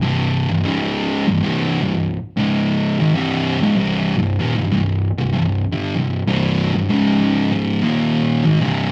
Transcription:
0.02 0.47 C2 medium
0.02 0.48 G2 medium
0.02 0.48 C3 loud
0.49 0.64 C2 medium
0.49 0.65 G2 medium
0.64 1.25 C#2 medium
0.64 1.26 G#2 medium
0.64 1.26 C#3 loud
1.27 1.41 C2 medium
1.27 1.42 G2 medium
1.43 1.80 C2 medium
1.43 1.81 G2 medium
1.43 1.81 C3 medium
1.82 2.15 C2 medium
1.82 2.15 G2 medium
2.37 2.98 C#2 medium
2.37 2.98 G#2 medium
2.37 2.99 C#3 loud
2.99 3.14 G#2 medium
2.99 3.14 D#3 medium
3.14 3.60 C2 medium
3.14 3.60 G2 medium
3.14 3.60 C3 medium
3.61 3.76 C#2 medium
3.61 3.77 G#2 loud
3.77 4.15 C2 medium
3.77 4.15 G2 medium
3.77 4.16 C3 medium
4.17 4.39 C2 medium
4.17 4.40 G2 medium
4.40 4.54 D#2 medium
4.40 4.55 A#2 loud
4.56 4.70 C2 medium
4.56 4.71 G2 medium
4.71 5.08 C2 medium
4.71 5.09 G2 medium
5.18 5.32 C2 medium
5.18 5.33 G2 medium
5.33 5.63 C2 medium
5.33 5.63 G2 medium
5.72 5.94 G2 medium
5.72 5.94 D3 loud
5.96 6.21 C2 medium
5.96 6.21 G2 medium
6.27 6.72 C2 loud
6.27 6.72 G2 medium
6.27 6.73 C3 loud
6.74 6.89 C2 medium
6.74 6.90 G2 medium
6.90 7.50 C#2 medium
6.90 7.51 G#2 medium
6.90 7.51 C#3 medium
7.52 7.82 C#2 medium
7.52 7.82 G#2 medium
7.52 7.83 C#3 loud
7.83 8.44 D#2 loud
7.83 8.44 A#2 loud
7.83 8.44 D#3 loud
8.45 8.59 G#2 medium
8.45 8.60 D#3 medium
8.60 8.92 C2 medium
8.60 8.92 G2 loud
8.60 8.92 C3 medium

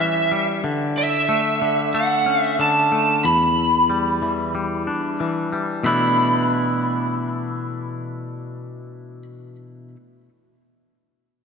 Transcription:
0.00 0.63 E3 soft
0.00 0.30 G3 soft
0.00 0.64 C#4 soft
0.00 0.46 E5 soft
0.32 0.64 G3 soft
0.64 1.60 D3 soft
0.98 1.98 E5 soft
1.29 1.93 A3 soft
1.62 2.58 D3 soft
1.94 2.91 A3 soft
1.94 2.41 F#5 soft
2.26 3.24 C#4 soft
2.41 2.56 E5 soft
2.59 3.24 D3 soft
2.59 3.27 A5 soft
2.92 3.25 A3 soft
3.25 4.87 E2 soft
3.25 5.16 B5 soft
3.90 4.54 G3 soft
4.22 5.19 E3 soft
4.55 5.51 G3 soft
4.87 5.85 D4 soft
5.20 5.84 E3 soft
5.53 5.85 G3 soft
5.84 9.95 B2 soft
5.84 9.96 E3 soft
5.84 9.96 A3 soft
5.84 9.97 D4 soft
5.84 9.97 E4 soft
5.84 9.22 B5 soft

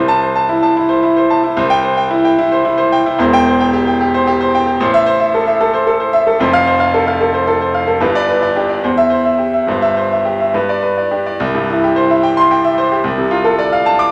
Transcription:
0.00 1.53 C2 medium
0.00 0.17 C5 medium
0.08 0.30 A5 medium
0.22 0.44 C5 medium
0.36 0.57 A5 medium
0.49 0.71 E4 medium
0.63 0.84 A5 medium
0.77 0.98 E4 medium
0.89 1.11 C5 medium
1.03 1.25 E4 medium
1.17 1.38 C5 medium
1.30 1.52 A5 medium
1.43 1.57 E4 medium
1.57 3.15 C2 medium
1.57 1.78 C5 medium
1.70 1.92 G5 loud
1.83 2.05 C5 medium
1.97 2.19 G5 medium
2.11 2.33 E4 medium
2.25 2.46 G5 medium
2.38 2.60 E4 medium
2.52 2.74 C5 medium
2.65 2.87 E4 medium
2.78 3.00 C5 medium
2.92 3.14 G5 medium
3.06 3.20 E4 medium
3.18 4.76 E1 loud
3.18 4.76 E2 loud
3.18 3.41 C5 medium
3.33 3.55 G5 loud
3.46 3.68 C5 medium
3.60 3.82 G5 medium
3.73 3.95 G4 medium
3.87 4.08 G5 medium
4.01 4.22 G4 medium
4.14 4.35 C5 medium
4.27 4.49 G4 medium
4.41 4.62 C5 medium
4.55 4.76 G5 medium
4.67 4.80 G4 medium
4.80 6.36 A1 loud
4.80 5.02 C5 medium
4.94 5.15 E5 loud
5.06 5.28 C5 medium
5.20 5.41 E5 medium
5.34 5.55 A4 medium
5.47 5.68 E5 medium
5.61 5.81 A4 medium
5.74 5.95 C5 medium
5.87 6.08 A4 medium
6.00 6.21 C5 medium
6.13 6.34 E5 medium
6.27 6.40 A4 medium
6.40 7.96 F1 medium
6.40 7.96 F2 loud
6.40 6.61 C5 medium
6.53 6.74 F5 loud
6.67 6.88 C5 medium
6.80 7.01 F5 medium
6.94 7.15 A4 medium
7.07 7.28 F5 medium
7.21 7.41 A4 medium
7.34 7.55 C5 medium
7.47 7.68 A4 medium
7.61 7.82 C5 medium
7.74 7.95 F5 medium
7.88 8.01 A4 medium
8.00 8.81 G1 medium
8.00 8.81 G2 medium
8.00 8.22 B4 medium
8.15 8.37 D5 loud
8.28 8.50 B4 medium
8.42 8.64 D5 medium
8.56 8.78 D4 medium
8.56 8.78 G4 medium
8.69 8.83 D5 medium
8.84 9.66 E2 medium
8.84 9.06 C5 medium
8.97 9.20 E5 medium
9.10 9.33 C5 medium
9.25 9.48 E5 medium
9.38 9.62 G4 medium
9.53 9.68 E5 medium
9.67 10.52 G1 medium
9.67 10.52 G2 medium
9.67 9.91 C5 medium
9.82 10.06 E5 medium
9.97 10.20 C5 medium
10.12 10.35 E5 medium
10.25 10.49 G4 medium
10.40 10.55 E5 medium
10.54 11.38 G2 medium
10.54 10.78 B4 medium
10.69 10.92 D5 medium
10.83 11.06 B4 medium
10.98 11.21 D5 medium
11.11 11.35 D4 medium
11.11 11.35 G4 medium
11.27 11.41 D5 medium
11.40 13.00 C2 loud
11.55 11.77 G2 medium
11.70 11.92 E4 medium
11.84 12.05 G4 medium
11.96 12.18 C5 medium
12.10 12.32 E5 medium
12.23 12.45 G5 medium
12.37 12.59 C6 medium
12.51 12.72 G5 medium
12.64 12.86 E5 medium
12.78 12.99 C5 medium
12.92 13.05 G4 medium
13.04 14.12 C2 medium
13.18 13.40 C3 medium
13.31 13.53 F4 medium
13.44 13.67 A4 medium
13.59 13.81 D5 medium
13.73 13.94 F5 medium
13.86 14.08 A5 medium
13.99 14.12 D6 loud

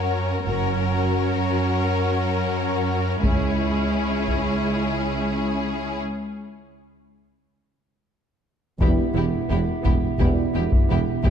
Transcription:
0.00 0.41 F#2 soft
0.00 0.41 C#4 soft
0.00 0.41 F#4 soft
0.00 0.45 A#4 soft
0.45 1.11 F#1 soft
0.45 3.20 F#2 medium
0.45 3.20 C#4 soft
0.45 3.20 F#4 soft
0.45 3.20 A#4 soft
3.23 3.89 C#2 soft
3.23 6.02 C#2 soft
3.23 5.98 C#4 medium
3.23 5.98 E4 soft
3.23 5.98 G#4 soft
3.23 taiko soft
4.28 taiko soft
8.80 8.89 E1 soft
8.80 8.95 E1 soft
8.80 8.89 E2 medium
8.80 9.05 B2 soft
8.80 9.04 G3 soft
8.80 8.89 B3 soft
8.80 11.30 B3 soft
8.80 9.06 B3 soft
8.80 11.30 E4 soft
8.80 8.89 E4 soft
8.80 9.06 E4 soft
8.80 8.90 G4 soft
8.80 11.30 G4 soft
8.80 11.30 E5 soft
8.80 taiko medium
9.15 9.23 E1 soft
9.15 9.30 E1 soft
9.15 9.24 E2 soft
9.15 9.23 B3 soft
9.15 9.24 E4 soft
9.15 9.24 G4 soft
9.48 9.58 E1 soft
9.48 9.65 E1 soft
9.48 9.59 E2 soft
9.48 9.56 B3 soft
9.48 9.58 E4 soft
9.48 9.58 G4 soft
9.83 9.93 E1 soft
9.83 9.99 E1 soft
9.83 9.93 E2 soft
9.83 9.91 B3 soft
9.83 9.93 E4 soft
9.83 9.93 G4 soft
9.83 taiko medium
10.19 10.27 E1 soft
10.19 10.35 E1 soft
10.19 10.29 E2 soft
10.19 10.44 B2 soft
10.19 10.44 G3 soft
10.19 10.28 B3 soft
10.19 10.44 B3 soft
10.19 10.27 E4 soft
10.19 10.44 E4 soft
10.19 10.27 G4 soft
10.19 taiko medium
10.53 10.69 E1 soft
10.53 10.63 E1 soft
10.53 10.64 E2 soft
10.53 10.61 B3 soft
10.53 10.63 E4 soft
10.53 10.63 G4 soft
10.72 taiko medium
10.89 11.03 E1 soft
10.89 10.98 E1 soft
10.89 10.99 E2 soft
10.89 10.97 B3 soft
10.89 10.98 E4 soft
10.89 10.98 G4 soft
11.23 11.30 E1 soft
11.23 11.30 E2 soft
11.23 11.30 B3 soft
11.23 11.30 E4 soft
11.23 11.30 G4 soft
11.23 taiko medium

